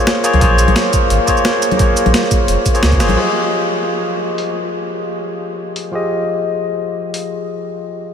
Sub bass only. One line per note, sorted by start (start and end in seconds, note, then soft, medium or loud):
0.34 0.41 C#2 medium
0.42 0.67 A#1 loud
0.68 0.75 A#1 medium
1.10 1.19 G#1 medium
2.06 2.13 A#1 medium
2.48 2.57 F1 medium
2.83 3.02 C#2 medium
3.00 3.11 F1 loud
3.09 3.17 A#1 medium